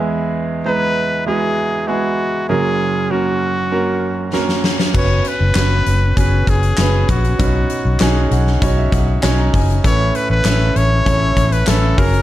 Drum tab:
CC |----------------|----------------|x---------------|----------------|
HH |----------------|----------------|--x-x-x-x-xxx-xx|x-x-x-x-x-x-x-ox|
CP |----------------|----------------|----x-------x---|----x-------x---|
SD |----------------|------------oooo|----o-------o---|----o--o----o---|
BD |----------------|----------------|o-------o-o---o-|o-------o-o---o-|

CC |----------------|
HH |x-x-x-x-x-xxx-ox|
CP |----x-------x---|
SD |----o-------o---|
BD |o-------o-o---o-|